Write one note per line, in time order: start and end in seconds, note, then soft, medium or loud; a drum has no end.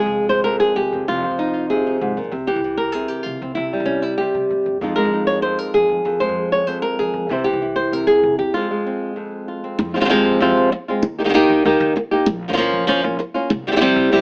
0.00 0.44 F2 medium
0.00 1.05 G#3 soft
0.00 0.29 G#4 medium
0.06 0.54 F1 medium
0.29 0.44 C5 medium
0.44 1.07 F2 medium
0.44 0.59 A#4 medium
0.60 1.07 G#4 medium
0.76 0.88 F1 medium
0.76 1.38 G4 medium
0.92 1.04 F1 medium
0.92 2.20 C4 soft
1.08 1.26 F1 medium
1.08 2.01 F2 medium
1.08 1.52 F4 medium
1.24 2.30 F3 soft
1.31 1.79 F1 medium
1.39 1.85 D#4 medium
1.53 1.69 F4 medium
1.70 2.17 C3 medium
1.70 2.32 G#4 medium
1.87 2.31 D#4 soft
2.01 2.13 F1 medium
2.01 2.16 G#2 medium
2.17 2.29 A#1 medium
2.17 2.32 A#2 soft
2.32 2.50 C2 medium
2.32 2.47 C3 medium
2.47 2.64 E3 medium
2.47 2.92 G4 medium
2.56 3.04 C2 medium
2.64 3.55 E3 soft
2.77 3.23 A#4 medium
2.92 3.55 C3 soft
2.92 3.08 G#4 medium
3.08 3.40 G4 medium
3.23 3.38 C2 medium
3.23 3.55 F4 medium
3.42 3.53 C2 medium
3.42 3.55 C4 soft
3.55 3.75 C2 medium
3.55 4.19 C3 medium
3.55 4.01 E4 medium
3.73 4.80 G3 medium
3.80 4.22 C2 medium
3.85 4.02 C#4 medium
4.02 4.17 E4 medium
4.18 4.80 C3 medium
4.18 4.80 G4 medium
4.35 4.48 C3 medium
4.50 4.64 A#2 medium
4.66 4.80 G2 medium
4.81 4.99 F2 medium
4.81 5.43 F2 medium
4.81 4.96 G#3 soft
4.81 5.13 D#4 soft
4.81 5.74 F4 soft
4.96 6.04 G#3 soft
4.96 5.26 A#4 medium
5.05 5.53 F2 medium
5.14 6.04 D#4 soft
5.27 5.42 C#5 medium
5.42 6.05 F2 medium
5.42 5.59 C5 medium
5.59 6.05 A#4 medium
5.74 5.86 F2 medium
5.74 6.37 G#4 medium
5.89 6.02 F2 medium
6.05 6.23 F2 medium
6.05 6.66 F2 medium
6.20 7.28 G#3 medium
6.20 6.52 C5 medium
6.29 6.77 F2 medium
6.52 6.67 C#5 medium
6.67 7.30 F2 medium
6.67 6.82 C5 medium
6.82 7.30 A#4 medium
6.99 7.11 F2 medium
6.99 7.30 G#4 medium
7.14 7.26 F2 medium
7.29 7.48 C2 medium
7.29 7.46 C3 medium
7.29 7.45 E3 soft
7.29 7.61 E4 soft
7.29 7.75 C5 soft
7.44 8.53 E3 soft
7.44 8.07 G4 medium
7.53 8.02 C2 medium
7.62 8.53 E4 soft
7.76 7.93 C5 medium
7.92 8.53 C3 medium
7.92 8.40 A#4 medium
8.07 8.38 G#4 medium
8.23 8.35 C2 medium
8.39 8.51 E2 medium
8.39 8.54 G4 medium
8.54 9.15 F2 medium
8.54 8.70 G#3 soft
8.54 8.85 C4 soft
8.54 9.47 F4 medium
8.71 9.77 G#3 medium
8.86 9.63 C4 soft
9.16 9.77 F2 medium
9.48 9.93 F4 soft
9.64 9.94 C4 soft
9.79 9.97 F2 medium
9.79 muted nylon-string guitar stroke medium
9.94 9.99 F3 medium
9.94 9.98 G#3 soft
9.94 9.97 C4 soft
9.94 9.96 F4 medium
9.94 10.00 F4 medium
10.00 10.20 D#2 medium
10.00 10.04 F3 medium
10.00 10.04 G#3 medium
10.00 10.04 C4 medium
10.00 10.05 F4 medium
10.05 10.08 F3 medium
10.05 10.09 G#3 medium
10.05 10.09 C4 medium
10.05 10.09 F4 medium
10.09 10.39 C3 medium
10.09 10.40 F3 medium
10.09 10.40 G#3 medium
10.09 10.41 C4 medium
10.09 10.41 F4 medium
10.25 10.37 F2 medium
10.40 10.53 F2 medium
10.40 10.71 C3 medium
10.40 10.71 F3 medium
10.40 10.71 G#3 medium
10.40 10.71 C4 medium
10.40 10.71 F4 medium
10.57 10.69 F2 medium
10.72 muted nylon-string guitar stroke medium
10.88 11.04 G#3 soft
10.88 11.03 C4 soft
10.88 11.03 F4 medium
11.02 11.21 D#2 medium
11.02 muted nylon-string guitar stroke medium
11.19 11.23 D#3 medium
11.19 11.22 A#3 soft
11.19 11.21 D#4 soft
11.19 11.21 G4 soft
11.24 11.44 C2 medium
11.24 11.28 D#3 medium
11.24 11.28 A#3 medium
11.24 11.29 D#4 medium
11.24 11.29 G4 medium
11.29 11.33 D#3 medium
11.29 11.33 A#3 medium
11.29 11.33 D#4 medium
11.29 11.34 G4 medium
11.34 11.64 D#3 medium
11.34 11.64 A#3 medium
11.34 11.65 D#4 medium
11.34 11.65 G4 loud
11.49 11.61 D#2 medium
11.65 11.77 D#2 medium
11.65 11.94 D#3 medium
11.65 11.95 A#3 medium
11.65 11.96 D#4 medium
11.65 11.95 G4 medium
11.80 11.92 D#2 medium
11.96 muted nylon-string guitar stroke medium
12.11 12.27 A#3 soft
12.11 12.26 D#4 soft
12.11 12.26 G4 medium
12.26 12.45 A#1 medium
12.26 muted nylon-string guitar stroke medium
12.48 12.68 G1 medium
12.48 12.52 F3 medium
12.48 12.52 A#3 medium
12.48 12.52 C#4 medium
12.48 12.53 F4 medium
12.53 12.56 F3 medium
12.53 12.56 A#3 medium
12.53 12.57 C#4 medium
12.53 12.57 F4 medium
12.57 12.86 F3 medium
12.57 12.87 A#3 medium
12.57 12.87 C#4 loud
12.57 12.88 F4 medium
12.73 12.85 A#1 medium
12.87 13.00 A#1 loud
12.87 13.03 F3 medium
12.87 13.03 A#3 medium
12.87 13.03 C#4 medium
12.87 13.02 F4 medium
13.03 13.16 A#1 medium
13.03 13.18 A#3 soft
13.03 13.18 C#4 medium
13.03 13.18 F4 medium
13.19 muted nylon-string guitar stroke medium
13.34 13.50 A#3 soft
13.34 13.50 C#4 medium
13.34 13.49 F4 medium
13.50 13.68 C2 medium
13.50 muted nylon-string guitar stroke medium
13.67 13.70 G3 medium
13.67 13.71 C4 medium
13.67 13.71 E4 medium
13.67 13.72 G4 medium
13.72 13.91 A#1 medium
13.72 13.75 G3 medium
13.72 13.76 C4 medium
13.72 13.76 E4 medium
13.72 13.76 G4 medium
13.76 13.80 G3 medium
13.76 13.80 C4 medium
13.76 13.81 E4 medium
13.76 13.80 G4 medium
13.81 14.10 C3 medium
13.81 14.11 G3 medium
13.81 14.11 C4 medium
13.81 14.12 E4 loud
13.81 14.12 G4 medium
13.96 14.08 C2 medium
14.12 14.21 C2 medium
14.12 14.21 C3 medium
14.12 14.21 G3 medium
14.12 14.21 C4 medium
14.12 14.21 E4 medium
14.12 14.21 G4 medium